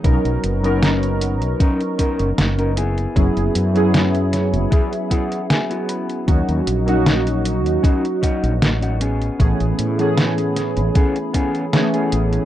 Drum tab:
HH |xxxxxxxxxxxxxxxx|xxxxxxxxxxxxxxxx|xxxxxxxxxxxxxxxx|xxxxxxxxxxxxxxxx|
SD |----o-------o---|----o-o-----o---|----o-------o---|----o-o-----o---|
BD |o-------o-o-----|o-------o-o-----|o-------o-o-----|o-------o-o-----|